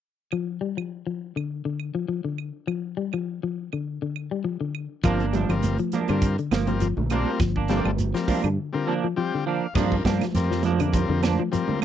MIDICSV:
0, 0, Header, 1, 9, 480
1, 0, Start_track
1, 0, Key_signature, -2, "minor"
1, 0, Tempo, 589391
1, 265, Time_signature, 4, 2, 24, 8
1, 9649, End_track
2, 0, Start_track
2, 0, Title_t, "Transistor combo organ"
2, 0, Program_c, 0, 18
2, 4100, Note_on_c, 0, 55, 71
2, 4103, Note_on_c, 0, 60, 67
2, 4108, Note_on_c, 0, 65, 67
2, 4111, Note_on_c, 0, 70, 76
2, 4281, Note_off_c, 0, 55, 0
2, 4283, Note_off_c, 0, 60, 0
2, 4285, Note_off_c, 0, 65, 0
2, 4287, Note_off_c, 0, 70, 0
2, 4473, Note_on_c, 0, 55, 72
2, 4478, Note_on_c, 0, 60, 64
2, 4480, Note_on_c, 0, 65, 57
2, 4485, Note_on_c, 0, 70, 70
2, 4702, Note_off_c, 0, 55, 0
2, 4705, Note_off_c, 0, 60, 0
2, 4706, Note_off_c, 0, 65, 0
2, 4708, Note_off_c, 0, 70, 0
2, 4953, Note_on_c, 0, 55, 65
2, 4957, Note_on_c, 0, 60, 65
2, 4958, Note_on_c, 0, 65, 64
2, 4963, Note_on_c, 0, 70, 74
2, 5182, Note_off_c, 0, 55, 0
2, 5184, Note_off_c, 0, 60, 0
2, 5184, Note_off_c, 0, 65, 0
2, 5187, Note_off_c, 0, 70, 0
2, 5428, Note_on_c, 0, 55, 66
2, 5431, Note_on_c, 0, 60, 57
2, 5436, Note_on_c, 0, 65, 61
2, 5438, Note_on_c, 0, 70, 76
2, 5598, Note_off_c, 0, 55, 0
2, 5599, Note_off_c, 0, 60, 0
2, 5602, Note_off_c, 0, 65, 0
2, 5602, Note_off_c, 0, 70, 0
2, 5788, Note_on_c, 0, 55, 75
2, 5793, Note_on_c, 0, 60, 74
2, 5795, Note_on_c, 0, 65, 73
2, 5801, Note_on_c, 0, 70, 93
2, 6016, Note_off_c, 0, 55, 0
2, 6019, Note_off_c, 0, 60, 0
2, 6020, Note_off_c, 0, 65, 0
2, 6023, Note_off_c, 0, 70, 0
2, 6262, Note_on_c, 0, 55, 69
2, 6264, Note_on_c, 0, 60, 67
2, 6270, Note_on_c, 0, 65, 69
2, 6270, Note_on_c, 0, 69, 83
2, 6442, Note_off_c, 0, 55, 0
2, 6443, Note_off_c, 0, 60, 0
2, 6446, Note_off_c, 0, 65, 0
2, 6446, Note_off_c, 0, 69, 0
2, 6630, Note_on_c, 0, 55, 72
2, 6631, Note_on_c, 0, 60, 60
2, 6633, Note_on_c, 0, 65, 64
2, 6636, Note_on_c, 0, 70, 74
2, 6860, Note_off_c, 0, 55, 0
2, 6861, Note_off_c, 0, 60, 0
2, 6861, Note_off_c, 0, 65, 0
2, 6863, Note_off_c, 0, 70, 0
2, 7106, Note_on_c, 0, 55, 78
2, 7111, Note_on_c, 0, 60, 75
2, 7117, Note_on_c, 0, 65, 81
2, 7119, Note_on_c, 0, 70, 89
2, 7276, Note_off_c, 0, 55, 0
2, 7278, Note_off_c, 0, 60, 0
2, 7281, Note_off_c, 0, 65, 0
2, 7282, Note_off_c, 0, 70, 0
2, 7462, Note_on_c, 0, 55, 71
2, 7465, Note_on_c, 0, 60, 63
2, 7467, Note_on_c, 0, 79, 62
2, 7469, Note_on_c, 0, 65, 66
2, 7472, Note_on_c, 0, 67, 74
2, 7690, Note_off_c, 0, 79, 0
2, 7692, Note_off_c, 0, 55, 0
2, 7694, Note_off_c, 0, 60, 0
2, 7696, Note_off_c, 0, 65, 0
2, 7697, Note_off_c, 0, 67, 0
2, 7708, Note_on_c, 0, 77, 60
2, 7931, Note_off_c, 0, 77, 0
2, 7934, Note_on_c, 0, 55, 73
2, 7941, Note_on_c, 0, 60, 63
2, 7944, Note_on_c, 0, 65, 64
2, 7950, Note_on_c, 0, 70, 76
2, 8168, Note_off_c, 0, 55, 0
2, 8172, Note_off_c, 0, 60, 0
2, 8173, Note_off_c, 0, 65, 0
2, 8176, Note_off_c, 0, 70, 0
2, 8426, Note_on_c, 0, 55, 75
2, 8431, Note_on_c, 0, 60, 70
2, 8435, Note_on_c, 0, 65, 74
2, 8439, Note_on_c, 0, 70, 89
2, 8654, Note_off_c, 0, 55, 0
2, 8656, Note_off_c, 0, 60, 0
2, 8658, Note_off_c, 0, 65, 0
2, 8660, Note_off_c, 0, 70, 0
2, 8898, Note_on_c, 0, 55, 78
2, 8904, Note_on_c, 0, 60, 79
2, 8910, Note_on_c, 0, 65, 70
2, 8910, Note_on_c, 0, 70, 88
2, 9129, Note_off_c, 0, 55, 0
2, 9132, Note_off_c, 0, 60, 0
2, 9135, Note_off_c, 0, 65, 0
2, 9135, Note_off_c, 0, 70, 0
2, 9378, Note_on_c, 0, 55, 84
2, 9381, Note_on_c, 0, 60, 68
2, 9383, Note_on_c, 0, 65, 73
2, 9388, Note_on_c, 0, 70, 84
2, 9609, Note_off_c, 0, 55, 0
2, 9611, Note_off_c, 0, 60, 0
2, 9611, Note_off_c, 0, 65, 0
2, 9614, Note_off_c, 0, 70, 0
2, 9649, End_track
3, 0, Start_track
3, 0, Title_t, "Clean electric guitar"
3, 0, Program_c, 1, 27
3, 4109, Note_on_c, 1, 53, 77
3, 4109, Note_on_c, 1, 58, 81
3, 4117, Note_on_c, 1, 62, 82
3, 4227, Note_off_c, 1, 62, 0
3, 4235, Note_off_c, 1, 58, 0
3, 4236, Note_on_c, 1, 62, 51
3, 4240, Note_off_c, 1, 53, 0
3, 4245, Note_on_c, 1, 58, 39
3, 4347, Note_off_c, 1, 62, 0
3, 4349, Note_on_c, 1, 53, 57
3, 4351, Note_off_c, 1, 58, 0
3, 4358, Note_on_c, 1, 62, 55
3, 4502, Note_off_c, 1, 53, 0
3, 4507, Note_off_c, 1, 62, 0
3, 4832, Note_on_c, 1, 53, 54
3, 4838, Note_on_c, 1, 58, 57
3, 4843, Note_on_c, 1, 62, 57
3, 4947, Note_off_c, 1, 62, 0
3, 4953, Note_off_c, 1, 58, 0
3, 4957, Note_on_c, 1, 62, 46
3, 4962, Note_off_c, 1, 53, 0
3, 4963, Note_on_c, 1, 58, 37
3, 5094, Note_off_c, 1, 62, 0
3, 5097, Note_off_c, 1, 58, 0
3, 5304, Note_on_c, 1, 53, 49
3, 5309, Note_on_c, 1, 58, 59
3, 5460, Note_off_c, 1, 53, 0
3, 5462, Note_off_c, 1, 58, 0
3, 5797, Note_on_c, 1, 58, 63
3, 5802, Note_on_c, 1, 62, 63
3, 5946, Note_off_c, 1, 58, 0
3, 5948, Note_off_c, 1, 62, 0
3, 6163, Note_on_c, 1, 62, 53
3, 6171, Note_on_c, 1, 58, 42
3, 6258, Note_off_c, 1, 58, 0
3, 6266, Note_on_c, 1, 53, 53
3, 6268, Note_off_c, 1, 62, 0
3, 6268, Note_on_c, 1, 58, 58
3, 6277, Note_on_c, 1, 62, 64
3, 6420, Note_off_c, 1, 53, 0
3, 6421, Note_off_c, 1, 58, 0
3, 6426, Note_off_c, 1, 62, 0
3, 6742, Note_on_c, 1, 53, 58
3, 6748, Note_on_c, 1, 58, 56
3, 6750, Note_on_c, 1, 62, 69
3, 6898, Note_off_c, 1, 53, 0
3, 6901, Note_off_c, 1, 58, 0
3, 6902, Note_off_c, 1, 62, 0
3, 7223, Note_on_c, 1, 53, 61
3, 7228, Note_on_c, 1, 58, 56
3, 7234, Note_on_c, 1, 62, 75
3, 7378, Note_off_c, 1, 53, 0
3, 7381, Note_off_c, 1, 58, 0
3, 7384, Note_off_c, 1, 62, 0
3, 7706, Note_on_c, 1, 53, 63
3, 7711, Note_on_c, 1, 58, 61
3, 7720, Note_on_c, 1, 62, 63
3, 7860, Note_off_c, 1, 53, 0
3, 7862, Note_off_c, 1, 58, 0
3, 7867, Note_off_c, 1, 62, 0
3, 7945, Note_on_c, 1, 53, 84
3, 7948, Note_on_c, 1, 58, 90
3, 7952, Note_on_c, 1, 62, 95
3, 8099, Note_off_c, 1, 53, 0
3, 8100, Note_off_c, 1, 58, 0
3, 8102, Note_off_c, 1, 62, 0
3, 8181, Note_on_c, 1, 53, 58
3, 8186, Note_on_c, 1, 58, 66
3, 8191, Note_on_c, 1, 62, 63
3, 8337, Note_off_c, 1, 53, 0
3, 8339, Note_off_c, 1, 58, 0
3, 8341, Note_off_c, 1, 62, 0
3, 8665, Note_on_c, 1, 53, 57
3, 8673, Note_on_c, 1, 58, 56
3, 8678, Note_on_c, 1, 62, 61
3, 8787, Note_off_c, 1, 62, 0
3, 8796, Note_off_c, 1, 53, 0
3, 8797, Note_on_c, 1, 62, 49
3, 8798, Note_off_c, 1, 58, 0
3, 8807, Note_on_c, 1, 58, 37
3, 8932, Note_off_c, 1, 62, 0
3, 8937, Note_off_c, 1, 58, 0
3, 9141, Note_on_c, 1, 53, 66
3, 9144, Note_on_c, 1, 58, 61
3, 9148, Note_on_c, 1, 62, 64
3, 9296, Note_off_c, 1, 53, 0
3, 9297, Note_off_c, 1, 58, 0
3, 9299, Note_off_c, 1, 62, 0
3, 9649, End_track
4, 0, Start_track
4, 0, Title_t, "Clean electric guitar"
4, 0, Program_c, 2, 27
4, 266, Note_on_c, 2, 53, 67
4, 475, Note_off_c, 2, 53, 0
4, 497, Note_on_c, 2, 55, 63
4, 616, Note_off_c, 2, 55, 0
4, 630, Note_on_c, 2, 53, 52
4, 843, Note_off_c, 2, 53, 0
4, 868, Note_on_c, 2, 53, 60
4, 1082, Note_off_c, 2, 53, 0
4, 1109, Note_on_c, 2, 50, 55
4, 1323, Note_off_c, 2, 50, 0
4, 1346, Note_on_c, 2, 50, 58
4, 1561, Note_off_c, 2, 50, 0
4, 1586, Note_on_c, 2, 53, 63
4, 1686, Note_off_c, 2, 53, 0
4, 1698, Note_on_c, 2, 53, 65
4, 1817, Note_off_c, 2, 53, 0
4, 1828, Note_on_c, 2, 50, 58
4, 2043, Note_off_c, 2, 50, 0
4, 2178, Note_on_c, 2, 53, 73
4, 2392, Note_off_c, 2, 53, 0
4, 2419, Note_on_c, 2, 55, 68
4, 2538, Note_off_c, 2, 55, 0
4, 2554, Note_on_c, 2, 53, 63
4, 2766, Note_off_c, 2, 53, 0
4, 2796, Note_on_c, 2, 53, 63
4, 3008, Note_off_c, 2, 53, 0
4, 3038, Note_on_c, 2, 50, 49
4, 3249, Note_off_c, 2, 50, 0
4, 3275, Note_on_c, 2, 50, 57
4, 3487, Note_off_c, 2, 50, 0
4, 3513, Note_on_c, 2, 55, 61
4, 3611, Note_off_c, 2, 55, 0
4, 3620, Note_on_c, 2, 53, 67
4, 3739, Note_off_c, 2, 53, 0
4, 3751, Note_on_c, 2, 50, 60
4, 3965, Note_off_c, 2, 50, 0
4, 4101, Note_on_c, 2, 53, 76
4, 4314, Note_off_c, 2, 53, 0
4, 4341, Note_on_c, 2, 55, 69
4, 4459, Note_off_c, 2, 55, 0
4, 4474, Note_on_c, 2, 53, 58
4, 4686, Note_off_c, 2, 53, 0
4, 4719, Note_on_c, 2, 53, 68
4, 4929, Note_off_c, 2, 53, 0
4, 4967, Note_on_c, 2, 50, 59
4, 5173, Note_off_c, 2, 50, 0
4, 5204, Note_on_c, 2, 50, 61
4, 5412, Note_off_c, 2, 50, 0
4, 5441, Note_on_c, 2, 53, 68
4, 5535, Note_off_c, 2, 53, 0
4, 5551, Note_on_c, 2, 53, 74
4, 5665, Note_off_c, 2, 53, 0
4, 5684, Note_on_c, 2, 50, 58
4, 5892, Note_off_c, 2, 50, 0
4, 6029, Note_on_c, 2, 53, 78
4, 6238, Note_off_c, 2, 53, 0
4, 6269, Note_on_c, 2, 55, 65
4, 6383, Note_off_c, 2, 55, 0
4, 6397, Note_on_c, 2, 55, 64
4, 6607, Note_off_c, 2, 55, 0
4, 6634, Note_on_c, 2, 53, 71
4, 6846, Note_off_c, 2, 53, 0
4, 6883, Note_on_c, 2, 50, 55
4, 7091, Note_off_c, 2, 50, 0
4, 7121, Note_on_c, 2, 50, 62
4, 7330, Note_off_c, 2, 50, 0
4, 7363, Note_on_c, 2, 53, 72
4, 7456, Note_off_c, 2, 53, 0
4, 7472, Note_on_c, 2, 53, 77
4, 7585, Note_off_c, 2, 53, 0
4, 7611, Note_on_c, 2, 50, 60
4, 7815, Note_off_c, 2, 50, 0
4, 7955, Note_on_c, 2, 53, 84
4, 8160, Note_off_c, 2, 53, 0
4, 8192, Note_on_c, 2, 55, 72
4, 8304, Note_off_c, 2, 55, 0
4, 8322, Note_on_c, 2, 53, 65
4, 8529, Note_off_c, 2, 53, 0
4, 8562, Note_on_c, 2, 53, 75
4, 8769, Note_off_c, 2, 53, 0
4, 8800, Note_on_c, 2, 50, 65
4, 9008, Note_off_c, 2, 50, 0
4, 9036, Note_on_c, 2, 50, 71
4, 9245, Note_off_c, 2, 50, 0
4, 9281, Note_on_c, 2, 53, 65
4, 9373, Note_off_c, 2, 53, 0
4, 9387, Note_on_c, 2, 53, 75
4, 9501, Note_off_c, 2, 53, 0
4, 9514, Note_on_c, 2, 50, 65
4, 9649, Note_off_c, 2, 50, 0
4, 9649, End_track
5, 0, Start_track
5, 0, Title_t, "Fingered electric bass"
5, 0, Program_c, 3, 33
5, 4105, Note_on_c, 3, 31, 77
5, 4446, Note_off_c, 3, 31, 0
5, 4474, Note_on_c, 3, 31, 70
5, 4696, Note_off_c, 3, 31, 0
5, 4963, Note_on_c, 3, 43, 75
5, 5181, Note_off_c, 3, 43, 0
5, 5306, Note_on_c, 3, 31, 74
5, 5646, Note_off_c, 3, 31, 0
5, 5678, Note_on_c, 3, 34, 74
5, 5898, Note_off_c, 3, 34, 0
5, 6026, Note_on_c, 3, 31, 82
5, 6366, Note_off_c, 3, 31, 0
5, 6394, Note_on_c, 3, 31, 69
5, 6615, Note_off_c, 3, 31, 0
5, 6873, Note_on_c, 3, 43, 74
5, 6975, Note_off_c, 3, 43, 0
5, 7943, Note_on_c, 3, 43, 91
5, 8163, Note_off_c, 3, 43, 0
5, 8180, Note_on_c, 3, 43, 80
5, 8303, Note_off_c, 3, 43, 0
5, 8425, Note_on_c, 3, 41, 81
5, 9004, Note_off_c, 3, 41, 0
5, 9033, Note_on_c, 3, 41, 77
5, 9253, Note_off_c, 3, 41, 0
5, 9649, End_track
6, 0, Start_track
6, 0, Title_t, "Muted clean electric guitar strokes"
6, 5316, Note_on_c, 9, 29, 63
6, 5398, Note_off_c, 9, 29, 0
6, 5793, Note_on_c, 9, 29, 58
6, 5874, Note_off_c, 9, 29, 0
6, 9621, Note_on_c, 9, 29, 60
6, 9649, Note_off_c, 9, 29, 0
6, 9649, End_track
7, 0, Start_track
7, 0, Title_t, "Muted fingered electric bass strokes"
7, 9520, Note_on_c, 9, 29, 33
7, 9602, Note_off_c, 9, 29, 0
7, 9649, End_track
8, 0, Start_track
8, 0, Title_t, "Shekere"
8, 4108, Note_on_c, 9, 82, 67
8, 4190, Note_off_c, 9, 82, 0
8, 4352, Note_on_c, 9, 82, 27
8, 4434, Note_off_c, 9, 82, 0
8, 4590, Note_on_c, 9, 82, 75
8, 4672, Note_off_c, 9, 82, 0
8, 4833, Note_on_c, 9, 82, 26
8, 4914, Note_off_c, 9, 82, 0
8, 5066, Note_on_c, 9, 82, 71
8, 5147, Note_off_c, 9, 82, 0
8, 5312, Note_on_c, 9, 82, 26
8, 5393, Note_off_c, 9, 82, 0
8, 5550, Note_on_c, 9, 82, 71
8, 5632, Note_off_c, 9, 82, 0
8, 5788, Note_on_c, 9, 82, 23
8, 5869, Note_off_c, 9, 82, 0
8, 6028, Note_on_c, 9, 82, 73
8, 6109, Note_off_c, 9, 82, 0
8, 6275, Note_on_c, 9, 82, 24
8, 6357, Note_off_c, 9, 82, 0
8, 6513, Note_on_c, 9, 82, 79
8, 6594, Note_off_c, 9, 82, 0
8, 6754, Note_on_c, 9, 82, 26
8, 6835, Note_off_c, 9, 82, 0
8, 7954, Note_on_c, 9, 82, 78
8, 8036, Note_off_c, 9, 82, 0
8, 8200, Note_on_c, 9, 82, 29
8, 8281, Note_off_c, 9, 82, 0
8, 8438, Note_on_c, 9, 82, 83
8, 8520, Note_off_c, 9, 82, 0
8, 8681, Note_on_c, 9, 82, 26
8, 8762, Note_off_c, 9, 82, 0
8, 8909, Note_on_c, 9, 82, 81
8, 8991, Note_off_c, 9, 82, 0
8, 9158, Note_on_c, 9, 82, 27
8, 9240, Note_off_c, 9, 82, 0
8, 9401, Note_on_c, 9, 82, 78
8, 9482, Note_off_c, 9, 82, 0
8, 9649, End_track
9, 0, Start_track
9, 0, Title_t, "Drums"
9, 259, Note_on_c, 9, 75, 58
9, 340, Note_off_c, 9, 75, 0
9, 635, Note_on_c, 9, 75, 57
9, 717, Note_off_c, 9, 75, 0
9, 1117, Note_on_c, 9, 75, 58
9, 1199, Note_off_c, 9, 75, 0
9, 1462, Note_on_c, 9, 75, 53
9, 1544, Note_off_c, 9, 75, 0
9, 1941, Note_on_c, 9, 75, 57
9, 2023, Note_off_c, 9, 75, 0
9, 2183, Note_on_c, 9, 75, 53
9, 2264, Note_off_c, 9, 75, 0
9, 2548, Note_on_c, 9, 75, 56
9, 2629, Note_off_c, 9, 75, 0
9, 3034, Note_on_c, 9, 75, 54
9, 3116, Note_off_c, 9, 75, 0
9, 3387, Note_on_c, 9, 75, 55
9, 3468, Note_off_c, 9, 75, 0
9, 3866, Note_on_c, 9, 75, 59
9, 3947, Note_off_c, 9, 75, 0
9, 4100, Note_on_c, 9, 42, 54
9, 4103, Note_on_c, 9, 36, 77
9, 4113, Note_on_c, 9, 75, 59
9, 4181, Note_off_c, 9, 42, 0
9, 4184, Note_off_c, 9, 36, 0
9, 4194, Note_off_c, 9, 75, 0
9, 4236, Note_on_c, 9, 42, 28
9, 4317, Note_off_c, 9, 42, 0
9, 4344, Note_on_c, 9, 42, 45
9, 4356, Note_on_c, 9, 63, 80
9, 4425, Note_off_c, 9, 42, 0
9, 4437, Note_off_c, 9, 63, 0
9, 4474, Note_on_c, 9, 42, 28
9, 4478, Note_on_c, 9, 75, 61
9, 4482, Note_on_c, 9, 63, 62
9, 4556, Note_off_c, 9, 42, 0
9, 4560, Note_off_c, 9, 75, 0
9, 4564, Note_off_c, 9, 63, 0
9, 4582, Note_on_c, 9, 42, 60
9, 4589, Note_on_c, 9, 63, 65
9, 4663, Note_off_c, 9, 42, 0
9, 4671, Note_off_c, 9, 63, 0
9, 4711, Note_on_c, 9, 42, 27
9, 4792, Note_off_c, 9, 42, 0
9, 4820, Note_on_c, 9, 42, 44
9, 4832, Note_on_c, 9, 63, 65
9, 4901, Note_off_c, 9, 42, 0
9, 4914, Note_off_c, 9, 63, 0
9, 4951, Note_on_c, 9, 42, 31
9, 4961, Note_on_c, 9, 75, 57
9, 5033, Note_off_c, 9, 42, 0
9, 5042, Note_off_c, 9, 75, 0
9, 5064, Note_on_c, 9, 42, 63
9, 5065, Note_on_c, 9, 36, 60
9, 5145, Note_off_c, 9, 42, 0
9, 5146, Note_off_c, 9, 36, 0
9, 5199, Note_on_c, 9, 42, 28
9, 5280, Note_off_c, 9, 42, 0
9, 5305, Note_on_c, 9, 75, 57
9, 5306, Note_on_c, 9, 63, 69
9, 5307, Note_on_c, 9, 42, 50
9, 5315, Note_on_c, 9, 38, 61
9, 5387, Note_off_c, 9, 63, 0
9, 5387, Note_off_c, 9, 75, 0
9, 5388, Note_off_c, 9, 42, 0
9, 5396, Note_off_c, 9, 38, 0
9, 5434, Note_on_c, 9, 42, 34
9, 5515, Note_off_c, 9, 42, 0
9, 5540, Note_on_c, 9, 42, 63
9, 5622, Note_off_c, 9, 42, 0
9, 5676, Note_on_c, 9, 63, 66
9, 5757, Note_off_c, 9, 63, 0
9, 5782, Note_on_c, 9, 42, 51
9, 5785, Note_on_c, 9, 75, 60
9, 5789, Note_on_c, 9, 63, 69
9, 5863, Note_off_c, 9, 42, 0
9, 5867, Note_off_c, 9, 75, 0
9, 5871, Note_off_c, 9, 63, 0
9, 6023, Note_on_c, 9, 42, 64
9, 6025, Note_on_c, 9, 36, 89
9, 6027, Note_on_c, 9, 75, 59
9, 6031, Note_on_c, 9, 38, 25
9, 6105, Note_off_c, 9, 42, 0
9, 6107, Note_off_c, 9, 36, 0
9, 6109, Note_off_c, 9, 75, 0
9, 6113, Note_off_c, 9, 38, 0
9, 6155, Note_on_c, 9, 36, 53
9, 6237, Note_off_c, 9, 36, 0
9, 6257, Note_on_c, 9, 42, 51
9, 6265, Note_on_c, 9, 38, 25
9, 6274, Note_on_c, 9, 63, 81
9, 6338, Note_off_c, 9, 42, 0
9, 6346, Note_off_c, 9, 38, 0
9, 6355, Note_off_c, 9, 63, 0
9, 6397, Note_on_c, 9, 75, 63
9, 6405, Note_on_c, 9, 63, 66
9, 6478, Note_off_c, 9, 75, 0
9, 6486, Note_off_c, 9, 63, 0
9, 6502, Note_on_c, 9, 42, 66
9, 6502, Note_on_c, 9, 63, 65
9, 6583, Note_off_c, 9, 63, 0
9, 6584, Note_off_c, 9, 42, 0
9, 6635, Note_on_c, 9, 42, 29
9, 6643, Note_on_c, 9, 38, 23
9, 6716, Note_off_c, 9, 42, 0
9, 6724, Note_off_c, 9, 38, 0
9, 6742, Note_on_c, 9, 46, 60
9, 6743, Note_on_c, 9, 36, 55
9, 6743, Note_on_c, 9, 63, 74
9, 6823, Note_off_c, 9, 46, 0
9, 6824, Note_off_c, 9, 36, 0
9, 6825, Note_off_c, 9, 63, 0
9, 6874, Note_on_c, 9, 42, 29
9, 6874, Note_on_c, 9, 75, 58
9, 6955, Note_off_c, 9, 75, 0
9, 6956, Note_off_c, 9, 42, 0
9, 7940, Note_on_c, 9, 49, 73
9, 7943, Note_on_c, 9, 64, 78
9, 7944, Note_on_c, 9, 36, 95
9, 7948, Note_on_c, 9, 38, 28
9, 7948, Note_on_c, 9, 75, 59
9, 8022, Note_off_c, 9, 49, 0
9, 8025, Note_off_c, 9, 64, 0
9, 8026, Note_off_c, 9, 36, 0
9, 8030, Note_off_c, 9, 38, 0
9, 8030, Note_off_c, 9, 75, 0
9, 8078, Note_on_c, 9, 36, 59
9, 8159, Note_off_c, 9, 36, 0
9, 8185, Note_on_c, 9, 36, 59
9, 8185, Note_on_c, 9, 42, 52
9, 8185, Note_on_c, 9, 63, 77
9, 8193, Note_on_c, 9, 38, 68
9, 8266, Note_off_c, 9, 36, 0
9, 8266, Note_off_c, 9, 42, 0
9, 8266, Note_off_c, 9, 63, 0
9, 8275, Note_off_c, 9, 38, 0
9, 8312, Note_on_c, 9, 63, 66
9, 8317, Note_on_c, 9, 42, 51
9, 8319, Note_on_c, 9, 75, 60
9, 8325, Note_on_c, 9, 38, 23
9, 8394, Note_off_c, 9, 63, 0
9, 8399, Note_off_c, 9, 42, 0
9, 8401, Note_off_c, 9, 75, 0
9, 8407, Note_off_c, 9, 38, 0
9, 8426, Note_on_c, 9, 42, 66
9, 8434, Note_on_c, 9, 38, 25
9, 8508, Note_off_c, 9, 42, 0
9, 8516, Note_off_c, 9, 38, 0
9, 8562, Note_on_c, 9, 38, 25
9, 8644, Note_off_c, 9, 38, 0
9, 8656, Note_on_c, 9, 63, 86
9, 8660, Note_on_c, 9, 42, 52
9, 8738, Note_off_c, 9, 63, 0
9, 8742, Note_off_c, 9, 42, 0
9, 8784, Note_on_c, 9, 64, 66
9, 8792, Note_on_c, 9, 42, 51
9, 8796, Note_on_c, 9, 75, 60
9, 8865, Note_off_c, 9, 64, 0
9, 8874, Note_off_c, 9, 42, 0
9, 8877, Note_off_c, 9, 75, 0
9, 8898, Note_on_c, 9, 64, 80
9, 8905, Note_on_c, 9, 42, 71
9, 8906, Note_on_c, 9, 36, 71
9, 8980, Note_off_c, 9, 64, 0
9, 8986, Note_off_c, 9, 42, 0
9, 8987, Note_off_c, 9, 36, 0
9, 9135, Note_on_c, 9, 63, 73
9, 9143, Note_on_c, 9, 42, 51
9, 9149, Note_on_c, 9, 75, 57
9, 9151, Note_on_c, 9, 38, 66
9, 9217, Note_off_c, 9, 63, 0
9, 9224, Note_off_c, 9, 42, 0
9, 9230, Note_off_c, 9, 75, 0
9, 9232, Note_off_c, 9, 38, 0
9, 9390, Note_on_c, 9, 42, 67
9, 9471, Note_off_c, 9, 42, 0
9, 9510, Note_on_c, 9, 63, 74
9, 9591, Note_off_c, 9, 63, 0
9, 9649, End_track
0, 0, End_of_file